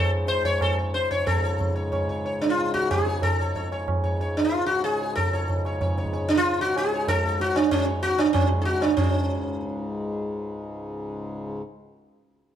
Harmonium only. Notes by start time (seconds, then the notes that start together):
Already playing: C#2 G#2
1.29 C#2 G#2
5.17 C#2 G#2
8.96 C#2 G#2